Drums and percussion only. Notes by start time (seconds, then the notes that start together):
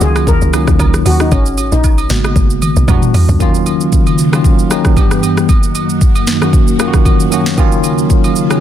0.01 shaker
0.16 cross-stick, high agogo, shaker
0.27 kick, shaker
0.42 shaker
0.53 cross-stick, high agogo, shaker
0.68 kick, cross-stick, shaker
0.79 kick, high agogo, low woodblock, shaker
0.94 cross-stick, shaker
1.06 open hi-hat, high agogo, shaker
1.20 cross-stick, shaker
1.32 kick, high agogo, shaker
1.46 shaker
1.58 high agogo, shaker
1.72 shaker
1.84 kick, low woodblock, shaker
1.98 high agogo, shaker
2.10 snare, shaker
2.24 cross-stick, high agogo, shaker
2.36 kick, high tom, shaker
2.50 shaker
2.62 mid tom, high agogo, shaker
2.76 shaker
2.88 kick, mid tom, high agogo, low woodblock, shaker
3.03 mid tom, shaker
3.14 floor tom, open hi-hat, high agogo, shaker
3.29 floor tom, shaker
3.40 kick, high agogo, shaker
3.55 shaker
3.66 high agogo, shaker
3.81 shaker
3.93 kick, shaker
4.07 high agogo, shaker
4.18 shaker
4.33 cross-stick, high agogo, shaker
4.44 kick, shaker
4.59 shaker
4.71 cross-stick, high agogo, shaker
4.85 kick, cross-stick, shaker
4.97 kick, high agogo, shaker
5.11 cross-stick, shaker
5.23 high agogo, shaker
5.37 cross-stick, shaker
5.49 kick, high agogo, shaker
5.63 shaker
5.75 high agogo, shaker
5.89 shaker
6.01 kick, shaker
6.15 high agogo, shaker
6.27 snare, shaker
6.42 cross-stick, high agogo, shaker
6.53 kick, shaker
6.68 shaker
6.79 cross-stick, high agogo, shaker
6.94 kick, cross-stick, shaker
7.05 kick, high agogo, shaker
7.20 shaker
7.32 high agogo, shaker
7.46 snare, shaker
7.58 kick, high agogo, shaker
7.72 shaker
7.84 high agogo, shaker
7.98 shaker
8.10 kick, shaker
8.24 high agogo, shaker
8.36 shaker
8.50 cross-stick, high agogo, shaker